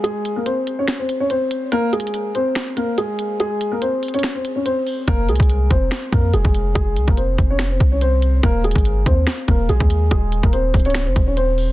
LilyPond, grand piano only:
\new Staff \with { instrumentName = "Grand piano" } { \time 4/4 \key aes \major \tempo 4 = 143 <aes aes'>8. <bes bes'>16 <c' c''>8. <des' des''>8 <c' c''>8 <des' des''>16 <c' c''>4 | <bes bes'>8 <aes aes'>4 <c' c''>4 <bes bes'>8 <aes aes'>4 | <aes aes'>8. <bes bes'>16 <c' c''>8. <des' des''>8 <c' c''>8 <des' des''>16 <c' c''>4 | <bes bes'>8 <aes aes'>4 <c' c''>4 <bes bes'>8 <aes aes'>4 |
<aes aes'>8. <bes bes'>16 <c' c''>8. <des' des''>8 <c' c''>8 <des' des''>16 <c' c''>4 | <bes bes'>8 <aes aes'>4 <c' c''>4 <bes bes'>8 <aes aes'>4 | <aes aes'>8. <bes bes'>16 <c' c''>8. <des' des''>8 <c' c''>8 <des' des''>16 <c' c''>4 | }